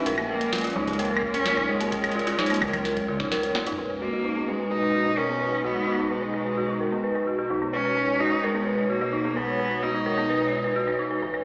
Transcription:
Already playing: C#4 D#5 G#5
0.06 A#1 G#3 A#4, closed hi-hat
0.18 A#3, claves
0.29 A#3 A#4
0.34 F4
0.41 A#4, closed hi-hat
0.53 F4, snare, closed hi-hat
0.55 closed hi-hat
0.58 closed hi-hat
0.61 F4, closed hi-hat
0.64 A#4, closed hi-hat
0.67 closed hi-hat
0.70 C#5, closed hi-hat
0.73 C#2 G#3 D#4, closed hi-hat, low conga
0.87 A#3, closed hi-hat, low conga
0.93 closed hi-hat
0.99 A#3 A#4, closed hi-hat
1.05 closed hi-hat
1.11 A#4
1.17 claves
1.22 A#4, kick
1.34 C#4 A#4, closed hi-hat
1.45 F4, snare, closed hi-hat
1.57 D#4, kick, claves
1.69 G#3 A#4
1.80 A#3, closed hi-hat
1.92 A#4, kick, closed hi-hat
2.04 A#4, closed hi-hat, claves
2.12 F4, closed hi-hat
2.19 closed hi-hat
2.27 F4, closed hi-hat
2.39 D#4, snare, closed hi-hat
2.46 closed hi-hat
2.50 A#3, closed hi-hat, claves
2.54 closed hi-hat
2.56 closed hi-hat
2.62 C#2 A#4, kick, closed hi-hat, claves
2.68 closed hi-hat
2.73 A#4, closed hi-hat, low conga, claves
2.85 A#4, snare, closed hi-hat
2.97 A#4, kick, closed hi-hat
3.08 F4, high tom
3.20 D#4, kick, snare
3.32 A#4, snare, closed hi-hat
3.43 A#4, closed hi-hat
3.55 F1 F4, snare
3.67 F1 D#4, closed hi-hat
3.72 mid tom
3.78 B1 B4
3.86 D#4 B4, claves
4.01 A#3 F#4, closed hi-hat
4.13 F#4
4.25 D#4, closed hi-hat
4.33 B2 B3, claves
4.44 G#3 B4, closed hi-hat, claves
4.52 claves
4.60 B4 D#5
4.71 D#4 B4
4.83 B4, closed hi-hat, claves
4.94 F#4
5.06 D#4, closed hi-hat
5.17 C#4 A#4
5.29 B3, closed hi-hat, claves
5.35 closed hi-hat
5.41 B4, closed hi-hat
5.47 closed hi-hat
5.52 B4, closed hi-hat
5.64 B1 B3 F#4
5.76 F#4, claves
5.87 D#4, closed hi-hat
5.99 B3
6.10 G#3 B4, closed hi-hat
6.22 B4
6.34 B4, claves
6.45 B4
6.57 F#4
6.69 D#4, closed hi-hat
6.80 A#4
6.92 B3, closed hi-hat
7.04 B4
7.15 B4, closed hi-hat, claves
7.27 F#4
7.38 F#4, closed hi-hat
7.46 C#5
7.50 B1 D#4
7.62 B3, claves
7.73 C#4 B4, closed hi-hat
7.85 B4
7.97 B4, closed hi-hat
8.08 B4, claves
8.20 D#4 F#4, closed hi-hat
8.22 closed hi-hat
8.25 closed hi-hat
8.27 closed hi-hat
8.29 D#4, closed hi-hat
8.43 G#3 A#4
8.55 B3, closed hi-hat, claves
8.59 closed hi-hat
8.63 B4, closed hi-hat
8.66 closed hi-hat
8.70 closed hi-hat
8.74 closed hi-hat
8.78 B4, closed hi-hat
8.90 A#3 F#4
9.01 F#4, closed hi-hat, claves
9.13 D#4
9.25 B3, closed hi-hat
9.36 B1 B3 B4
9.48 B4, claves
9.54 claves
9.59 B4, closed hi-hat, claves
9.62 closed hi-hat, claves
9.71 B4
9.83 D#4 F#4, closed hi-hat
9.94 D#4, claves
10.06 A#4, closed hi-hat, claves
10.18 B3, claves
10.29 B4
10.41 B4, closed hi-hat
10.53 F4
10.64 B4, closed hi-hat
10.76 F#4
10.87 B4, claves
10.90 claves
10.92 claves
10.94 claves
10.99 D#4
11.05 closed hi-hat
11.11 B4
11.22 A1 A3 B4
11.31 C#4 B4, claves

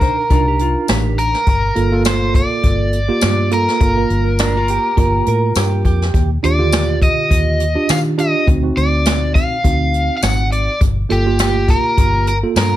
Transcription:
Already playing: D4 D#4 A#4
0.01 C5, kick, closed hi-hat
0.18 A#4
0.30 C2 D4 D#4 F4 A#4, kick, closed hi-hat
0.48 G4
0.59 F4, closed hi-hat
0.88 A1 G4, snare, closed hi-hat, tambourine
1.18 A#4, closed hi-hat
1.34 snare
1.46 G1, kick, closed hi-hat
1.75 G1 A#3 F4 A4, closed hi-hat
1.92 A#3 F4 A4
2.05 C5, snare, closed hi-hat, tambourine
2.34 D5, kick, closed hi-hat
2.63 G1, kick, closed hi-hat
2.93 closed hi-hat
3.08 A#3 F4 G4
3.21 G2, snare, closed hi-hat, tambourine
3.51 A#3 F4 A4 A#4, closed hi-hat
3.68 snare
3.80 G1 A#3 F4 A4, kick, closed hi-hat
3.97 A#3 F4 A#4
4.10 G1, closed hi-hat
4.39 D4, snare, closed hi-hat, tambourine
4.57 F4
4.68 G4, closed hi-hat
4.97 G1 A#3 F4 A#4, kick, closed hi-hat
5.26 A2 A#4, closed hi-hat
5.55 G2 G4, snare, closed hi-hat, tambourine
5.85 F2 G4, kick, closed hi-hat
6.02 snare
6.14 D#2, kick, closed hi-hat
6.43 D#2 D4 F4 G4 D5, closed hi-hat
6.58 D3 F4 G4
6.72 snare, closed hi-hat, tambourine
7.02 D#5, kick, closed hi-hat
7.31 D#2, kick, closed hi-hat
7.60 closed hi-hat
7.75 D4 F4 G4
7.89 D#3 F5, snare, closed hi-hat, tambourine
8.18 D4 F4 G4 D#5, closed hi-hat
8.47 D2 C4 D#4 F#4, kick, closed hi-hat
8.63 C4 D#4 F#4
8.77 D2 D5, closed hi-hat
9.06 snare, closed hi-hat, tambourine
9.35 F5, kick, closed hi-hat
9.64 D2 C4 D#4 F#4, kick, closed hi-hat
9.94 closed hi-hat
10.17 F5
10.22 G#1 F#5, snare, closed hi-hat, tambourine
10.52 D5, closed hi-hat
10.81 G1, kick, closed hi-hat
11.09 G1 A#3 F4 G4 A4, closed hi-hat
11.26 A#3 F4 G4
11.39 G4, snare, closed hi-hat, tambourine
11.68 A#4, kick, closed hi-hat
11.97 G1, kick, closed hi-hat
12.27 A#4, closed hi-hat
12.43 A#3 F4 A4
12.56 G2 A#4, snare, closed hi-hat, tambourine

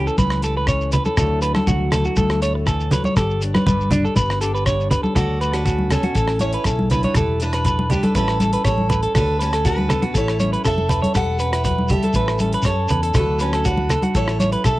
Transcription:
Already playing: E3 C#4 A4
0.07 A4, shekere
0.18 C#2 A3 B4, kick, high conga, shekere
0.31 cross-stick
0.42 A4, closed hi-hat, shekere
0.57 B4
0.67 C#4 C#5, kick, cross-stick, shekere
0.81 shekere
0.92 B4, closed hi-hat, low conga, shekere
1.05 A4, high conga, shekere
1.17 D2 D3 F#3 A3 E4 F#4 A4, kick, cross-stick, low conga, shekere
1.42 E4 B4, closed hi-hat, shekere
1.55 A4, cross-stick, high conga
1.67 D2 F#3 F#4, kick, low conga, shekere
1.92 E4 A4, cross-stick, closed hi-hat, low conga, shekere
2.05 F#4, shekere
2.16 D2 A3 A4, kick, high conga, shekere
2.30 cross-stick
2.42 A2 A4 C#5, closed hi-hat, shekere
2.55 muted clean electric guitar stroke
2.66 E3 A4, kick, cross-stick, shekere
2.80 shekere
2.91 F#3 B4, closed hi-hat, low conga, shekere
3.04 C#5, high conga, shekere
3.17 G1 G4 A4, muted nylon-string guitar stroke, kick, cross-stick, shekere
3.30 shekere
3.42 D4, closed hi-hat, shekere
3.54 B4, cross-stick, high conga, shekere
3.66 G1 G3 G4 B4, kick, low conga, shekere
3.80 shekere
3.91 D4, closed hi-hat, high conga, low conga, shekere
4.04 A4, shekere
4.16 G1 B3 B4, kick, high conga, shekere
4.30 cross-stick, shekere
4.41 D3 G4 A4, closed hi-hat, shekere
4.55 B4, shekere
4.66 D4 C#5, kick, cross-stick, shekere
4.80 shekere
4.91 B4, closed hi-hat, low conga, shekere
5.03 A4, high conga, shekere
5.15 D2 D3 F#4 A4 D5, kick, cross-stick, closed hi-hat, low conga, shekere
5.41 A3 B4, closed hi-hat, shekere
5.53 D4 F#4 B4, cross-stick, closed hi-hat
5.66 C#3 F#4, kick, closed hi-hat, shekere
5.78 high conga
5.90 B2 C#4 A4, cross-stick, closed hi-hat, low conga, shekere
6.03 F#4, closed hi-hat, high conga
6.15 A1 A2 E4 A4, kick, closed hi-hat, shekere
6.28 cross-stick
6.39 C#4 E4 C#5, closed hi-hat, high conga, shekere
6.53 B4, closed hi-hat
6.64 B1 C#3 A4, kick, cross-stick, closed hi-hat, shekere
6.79 high conga
6.90 D3 E4 B4, closed hi-hat, low conga, shekere
7.03 C#5, closed hi-hat, high conga
7.15 E1 E3 G4 A4, kick, cross-stick, closed hi-hat, low conga, shekere
7.40 D4 E4 B4, closed hi-hat, shekere
7.53 B4, cross-stick, closed hi-hat
7.64 F#3 B4, kick, closed hi-hat, shekere
7.79 high conga
7.89 G3 D4 G4 B4, closed hi-hat, low conga, shekere
8.03 A4, closed hi-hat, high conga
8.15 A1 A2 C#4 E4 A4 B4, kick, closed hi-hat, shekere
8.28 cross-stick
8.40 A4, closed hi-hat, high conga, shekere
8.53 B4, closed hi-hat
8.65 A1 E3 C#4 A4 C#5, kick, cross-stick, closed hi-hat, shekere
8.78 high conga
8.90 B4, closed hi-hat, low conga, shekere
9.03 A4, closed hi-hat
9.14 D2 D3 D4 F#4 A4 B4, kick, cross-stick, closed hi-hat, low conga, shekere
9.39 A3 C#4 A4 B4, closed hi-hat, shekere
9.53 A4, cross-stick, closed hi-hat
9.65 C#3 D4 F#4 B4, kick, closed hi-hat, shekere
9.78 high conga
9.89 B2 A4, cross-stick, closed hi-hat, low conga, shekere
10.02 F#4, closed hi-hat, high conga
10.14 A1 A2 E4 A4 C#5, kick, closed hi-hat, shekere
10.28 cross-stick
10.40 C#4 C#5, closed hi-hat, high conga, shekere
10.53 B4, closed hi-hat
10.64 F1 E3 A4 E5, kick, cross-stick, closed hi-hat, shekere
10.78 high conga
10.89 B4, closed hi-hat, low conga, shekere
11.02 C#5, closed hi-hat, high conga
11.15 E1 E3 G4 A4 B4 F#5, kick, cross-stick, closed hi-hat, shekere
11.39 C#4 B4, closed hi-hat, shekere
11.53 E4 B4, cross-stick, closed hi-hat
11.64 F#3 B4, kick, closed hi-hat, low conga, shekere
11.78 high conga
11.89 G3 G4 A4 E5, kick, closed hi-hat, low conga, shekere
12.03 A4, closed hi-hat, high conga
12.14 A1 A2 E3 C#4 B4, muted nylon-string guitar stroke, kick, closed hi-hat, shekere
12.18 A4
12.28 cross-stick
12.38 C#4 A4, closed hi-hat, high conga, shekere
12.52 B4, closed hi-hat
12.62 F#2 E3 C#4 C#5, kick, cross-stick, closed hi-hat, shekere
12.67 A4
12.88 E2 B4, closed hi-hat, low conga, shekere
13.03 A4, closed hi-hat
13.14 D2 D3 F#3 A3 D4 E4 F#4 A4 B4, kick, cross-stick, closed hi-hat, low conga, shekere
13.39 C#4 A4 B4, muted nylon-string guitar stroke, closed hi-hat, shekere
13.53 A4, cross-stick, closed hi-hat
13.64 F#3 D4 F#4 B4, kick, closed hi-hat, shekere
13.77 high conga
13.89 A4, cross-stick, closed hi-hat, low conga, shekere
14.02 F#4, closed hi-hat, high conga
14.15 A1 A2 E4 A4 C#5, kick, closed hi-hat, shekere
14.28 cross-stick
14.40 C#4 C#5, closed hi-hat, high conga, shekere
14.52 B4, closed hi-hat
14.64 B1 C#3 A4 E5, kick, cross-stick, closed hi-hat, shekere

